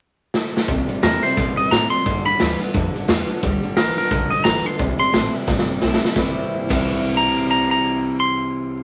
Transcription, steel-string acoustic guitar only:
0.69 1.35 C3 medium
1.03 1.22 E3 medium
1.03 1.23 G3 medium
1.03 1.23 C4 medium
1.03 1.22 E4 medium
1.23 1.38 C4 soft
1.23 1.37 E4 medium
1.38 1.71 E3 medium
1.72 2.05 F3 medium
2.07 2.40 G3 medium
2.41 2.60 G3 medium
2.41 2.61 B3 medium
2.41 2.60 F4 loud
2.61 2.75 B3 medium
2.61 2.74 F4 medium
2.74 3.40 D3 medium
3.08 3.28 G3 medium
3.08 3.28 B3 medium
3.08 3.28 F4 loud
3.29 3.43 B3 medium
3.29 3.42 F4 medium
3.43 3.76 G3 medium
3.77 3.97 G3 medium
3.77 3.97 B3 medium
3.77 3.97 F4 medium
3.98 4.12 B3 medium
3.98 4.11 F4 medium
4.12 4.77 D3 loud
4.46 4.65 G3 medium
4.46 4.66 B3 medium
4.46 4.65 F4 medium
4.67 4.80 B3 soft
4.67 4.79 F4 medium
4.80 5.45 C3 medium
5.14 5.33 E3 medium
5.14 5.34 G3 medium
5.14 5.34 C4 medium
5.14 5.33 E4 loud
5.34 5.48 C4 soft
5.34 5.47 E4 medium
5.48 6.13 G2 medium
5.81 6.01 E3 medium
5.81 6.01 G3 medium
5.81 6.01 C4 medium
5.81 6.01 E4 medium
6.02 6.16 C4 soft
6.02 6.15 E4 medium
6.15 6.69 C3 medium
6.15 6.70 E3 medium
6.15 6.71 G3 medium
6.15 6.71 C4 medium
6.15 6.72 E4 medium
6.69 8.83 C3 medium
6.69 8.83 E3 medium
6.69 8.83 G3 medium
6.69 8.83 C4 medium
6.69 8.83 E4 loud

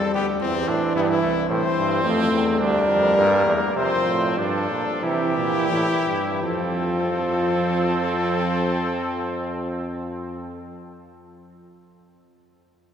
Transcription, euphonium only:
0.00 0.40 G3 loud
0.42 1.47 E3 loud
1.49 2.05 E3 loud
2.04 2.61 A3 loud
2.59 3.58 G3 loud
3.75 4.67 F3 loud
5.03 5.67 E3 loud
5.71 6.41 E3 loud
6.42 10.72 F3 loud

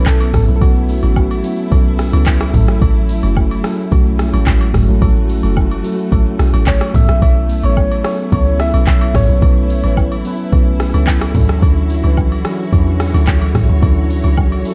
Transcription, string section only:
0.00 11.31 A3 medium
0.00 2.50 B3 medium
0.00 4.70 E4 medium
2.54 6.90 F#3 medium
4.74 6.92 F#4 medium
6.94 11.31 B3 medium
6.94 14.74 E4 medium
11.35 14.74 E3 medium
11.35 14.74 F#4 medium
11.35 14.74 C#5 medium

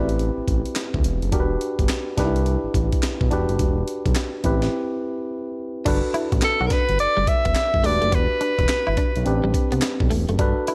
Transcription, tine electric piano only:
0.00 1.30 C4 medium
0.00 1.30 E4 medium
0.00 1.30 G4 medium
0.00 1.31 B4 medium
1.32 2.16 D4 medium
1.32 2.18 F#4 medium
1.32 2.17 G4 medium
1.32 1.42 A#4 medium
1.40 2.18 B4 medium
2.17 3.29 D4 medium
2.17 2.26 D#4 medium
2.17 3.29 G4 medium
2.17 3.30 B4 medium
2.24 3.32 E4 medium
3.30 4.42 D4 medium
3.30 4.42 F#4 medium
3.30 4.43 G4 medium
3.30 4.43 B4 medium
4.44 5.83 C4 medium
4.44 5.83 E4 medium
4.44 5.84 G4 medium
4.44 5.84 B4 medium
5.85 7.80 D4 medium
5.85 7.80 F#4 medium
5.85 7.81 A4 medium
5.85 7.81 B4 medium
7.84 9.22 D4 medium
7.84 9.23 F#4 medium
7.84 9.23 G4 medium
7.84 9.24 B4 medium
9.25 10.36 C4 medium
9.25 10.37 D4 medium
9.25 10.37 G4 medium
9.25 10.37 B4 medium
10.39 10.74 D4 medium
10.39 10.74 F#4 medium
10.39 10.74 A4 medium
10.39 10.74 B4 medium

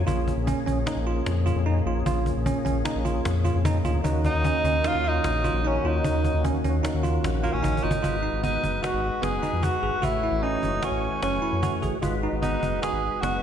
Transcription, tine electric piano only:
0.07 0.30 F4 medium
0.47 0.59 C#4 medium
0.66 0.78 C#4 medium
0.87 0.98 D#4 medium
1.07 1.30 F4 medium
1.46 1.58 F4 medium
1.66 1.78 D#4 medium
1.87 1.98 F4 medium
2.06 2.30 F4 medium
2.46 2.58 C#4 medium
2.65 2.77 C#4 medium
2.85 2.97 D#4 medium
3.05 3.29 F4 medium
3.45 3.57 F4 medium
3.65 3.77 D#4 medium
3.85 3.97 F4 medium
4.04 4.28 D#4 medium
4.45 4.56 C#4 medium
4.65 4.77 C#4 medium
4.85 4.97 D#4 medium
5.05 5.28 F4 medium
5.44 5.56 F4 medium
5.64 5.76 D#4 medium
5.85 5.96 F4 medium
6.05 6.28 D#4 medium
6.44 6.56 C#4 medium
6.64 6.76 C#4 medium
6.83 6.95 D#4 medium
7.03 7.27 F4 medium
7.43 7.55 F4 medium
7.63 7.75 D#4 medium
7.83 7.95 F4 medium
8.03 8.15 F4 medium
8.23 8.35 D#4 medium
8.43 8.67 B3 medium
8.83 9.06 F#4 medium
9.22 9.34 B3 medium
9.43 9.54 D#4 medium
9.63 9.74 F#4 medium
9.83 9.95 G#4 medium
10.02 10.14 F#4 medium
10.23 10.35 E4 medium
10.43 10.66 C#4 medium
10.83 11.06 F#4 medium
11.23 11.34 C#4 medium
11.42 11.54 E4 medium
11.62 11.74 F#4 medium
11.82 11.94 G#4 medium
12.02 12.14 F4 medium
12.23 12.35 D#4 medium
12.43 12.66 B3 medium
12.82 13.06 F#4 medium
13.23 13.34 B3 medium

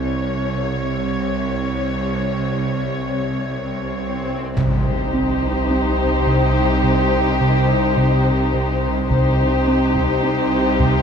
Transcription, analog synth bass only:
4.57 4.91 C3 medium
5.14 5.48 C4 medium
5.70 6.04 C4 soft
6.27 6.61 C3 medium
6.84 7.17 C3 soft
7.41 7.74 C3 medium
7.97 8.31 C3 medium
8.54 8.88 C3 soft
9.10 9.44 C3 medium
9.67 10.01 C4 medium
10.23 10.57 C4 soft
10.80 11.02 C3 medium

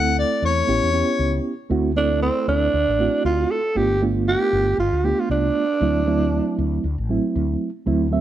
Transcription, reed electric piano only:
0.00 0.67 A3 medium
0.00 0.68 C4 medium
0.00 0.67 E4 medium
0.00 0.68 A4 medium
0.67 0.89 B3 medium
0.67 0.89 C#4 medium
0.67 0.89 E4 medium
0.67 0.89 G4 medium
0.93 1.52 B3 medium
0.93 1.52 C#4 medium
0.93 1.53 E4 medium
0.93 1.53 G4 medium
1.70 1.90 A3 medium
1.70 1.91 C4 medium
1.70 1.91 E4 medium
1.70 1.91 F#4 medium
1.96 2.74 A3 medium
1.96 2.74 C4 medium
1.96 2.74 E4 medium
1.96 2.74 A4 medium
2.99 3.58 A3 medium
2.99 3.58 C4 medium
2.99 3.58 E4 medium
2.99 3.59 F#4 medium
3.75 3.96 A3 medium
3.75 3.96 B3 medium
3.75 3.96 D4 medium
3.75 3.97 F4 medium
4.01 4.79 A3 medium
4.01 4.79 B3 medium
4.01 4.80 D4 medium
4.01 4.80 F4 medium
5.04 5.63 A3 medium
5.04 5.63 B3 medium
5.04 5.64 D4 medium
5.04 5.64 F4 medium
5.80 6.01 F#3 medium
5.80 6.01 A3 medium
5.80 6.02 C4 medium
5.80 6.02 E4 medium
6.06 6.84 F#3 medium
6.06 6.85 A3 medium
6.06 6.85 C4 medium
6.06 6.85 E4 loud
7.09 7.68 F#3 medium
7.09 7.68 A3 medium
7.09 7.69 C4 medium
7.09 7.69 E4 medium
7.86 8.06 F#3 medium
7.86 8.07 A3 medium
7.86 8.07 C4 medium
7.86 8.07 E4 loud
8.11 8.21 F#3 medium
8.11 8.21 A3 medium
8.11 8.21 C4 medium
8.11 8.21 E5 medium

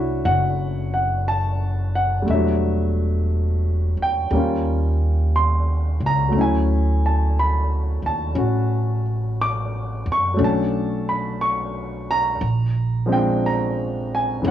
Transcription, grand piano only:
0.00 2.25 A3 soft
0.00 2.28 C#4 soft
0.00 2.30 D4 soft
0.00 2.29 E4 soft
0.00 2.30 F#4 medium
0.00 2.30 C#5 medium
0.00 0.27 E5 medium
0.25 0.92 F#5 medium
0.94 1.28 F#5 medium
1.28 1.91 A5 medium
1.96 2.26 F#5 medium
2.22 4.28 G3 soft
2.22 4.30 A3 soft
2.30 4.34 F#3 soft
2.30 4.32 D4 soft
2.30 3.26 E5 medium
4.02 5.31 G5 medium
4.31 6.34 G3 soft
4.31 6.35 A#3 soft
4.31 6.35 C#4 soft
4.37 6.37 F4 soft
5.36 5.98 C6 medium
6.06 6.38 A#5 medium
6.29 10.32 F#3 soft
6.29 10.35 A3 soft
6.36 8.33 C#4 soft
6.36 10.42 E4 soft
6.41 7.08 G#5 medium
7.06 7.35 A5 medium
7.39 8.02 B5 medium
8.06 9.02 A5 medium
8.35 10.37 C#4 soft
8.35 10.40 F#4 soft
9.41 10.04 D6 medium
10.12 10.40 C#6 medium
10.34 12.39 F#3 soft
10.34 12.41 A3 soft
10.38 12.42 C#4 soft
10.38 12.42 D4 medium
10.44 11.12 A5 medium
11.09 11.42 B5 medium
11.41 12.05 C#6 medium
12.11 13.14 A#5 medium
13.06 14.42 F3 soft
13.06 14.42 G#3 soft
13.06 14.44 C4 soft
13.11 14.45 D4 medium
13.11 13.45 G5 medium
13.46 14.15 A#5 medium
14.15 14.47 G#5 medium
14.42 14.51 E3 soft
14.42 14.51 G#3 soft
14.46 14.51 B3 soft
14.46 14.51 C#4 medium
14.46 14.51 F#5 medium

